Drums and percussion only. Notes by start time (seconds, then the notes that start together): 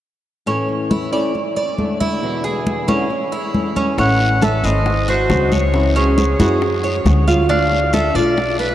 0.47 high conga
0.69 high conga
0.91 high conga
1.13 high conga
1.35 high conga
1.57 high conga
1.78 high conga
2.01 high conga
2.23 high conga
2.45 high conga
2.67 high conga
2.88 high conga
3.10 high conga
3.32 high conga
3.54 high conga
3.77 high conga
3.98 high bongo, high conga, long guiro
4.21 high bongo, high conga
4.42 high bongo, high conga, short guiro
4.64 high bongo, high conga, short guiro
4.86 high bongo, high conga, long guiro
5.08 high bongo, high conga
5.30 high bongo, low bongo, high conga, short guiro
5.52 high conga, short guiro
5.74 high bongo, high conga, long guiro
5.96 high conga
6.18 high bongo, high conga, short guiro
6.40 high bongo, high conga, short guiro
6.62 high bongo, high conga, long guiro
6.84 high bongo, high conga
7.06 high bongo, low bongo, high conga, short guiro
7.28 high bongo, high conga, short guiro
7.49 high bongo, high conga, long guiro
7.72 high bongo, high conga
7.93 high bongo, high conga, short guiro
8.15 high bongo, high conga, short guiro
8.37 high bongo, high conga, long guiro
8.60 high bongo, high conga